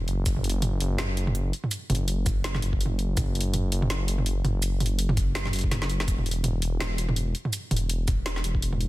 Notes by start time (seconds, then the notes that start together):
0.08 F#1, closed hi-hat
0.26 F#1, kick, closed hi-hat, shaker
0.37 mid tom
0.44 closed hi-hat
0.50 closed hi-hat
0.62 closed hi-hat, mid tom
0.80 F#1, closed hi-hat
0.98 snare, closed hi-hat, mid tom
1.17 closed hi-hat
1.27 mid tom
1.35 closed hi-hat
1.53 closed hi-hat
1.64 mid tom
1.71 closed hi-hat, shaker
1.90 F#1, closed hi-hat, mid tom
1.95 closed hi-hat
2.08 closed hi-hat
2.26 kick, closed hi-hat, mid tom, shaker
2.44 snare, closed hi-hat
2.55 snare, mid tom
2.62 F#1, closed hi-hat
2.73 kick
2.81 closed hi-hat
2.86 mid tom
2.99 closed hi-hat
3.17 F#1, kick, closed hi-hat, mid tom, shaker
3.35 closed hi-hat
3.41 closed hi-hat
3.54 closed hi-hat, mid tom
3.72 F#1, closed hi-hat
3.82 mid tom
3.90 snare, closed hi-hat
4.08 closed hi-hat
4.18 mid tom
4.26 closed hi-hat
4.44 F#1, closed hi-hat, mid tom
4.62 closed hi-hat, shaker
4.80 closed hi-hat, mid tom
4.86 closed hi-hat
4.99 closed hi-hat
5.09 mid tom
5.17 kick, closed hi-hat, shaker
5.35 snare, closed hi-hat
5.46 snare, mid tom
5.53 F#1, closed hi-hat
5.56 closed hi-hat
5.59 closed hi-hat
5.61 kick, closed hi-hat
5.71 snare, closed hi-hat, mid tom
5.82 snare
5.90 closed hi-hat
6.00 snare
6.08 E1, kick, closed hi-hat, shaker
6.18 mid tom
6.26 closed hi-hat
6.31 closed hi-hat
6.44 closed hi-hat, mid tom
6.62 E1, closed hi-hat
6.80 snare, closed hi-hat, mid tom
6.98 closed hi-hat
7.09 mid tom
7.16 closed hi-hat
7.35 closed hi-hat
7.45 mid tom
7.53 closed hi-hat, shaker
7.71 E1, closed hi-hat, mid tom
7.77 closed hi-hat
7.89 closed hi-hat
8.08 kick, closed hi-hat, mid tom, shaker
8.26 snare, closed hi-hat
8.36 snare
8.44 E1, closed hi-hat
8.55 kick
8.62 closed hi-hat
8.73 mid tom
8.81 closed hi-hat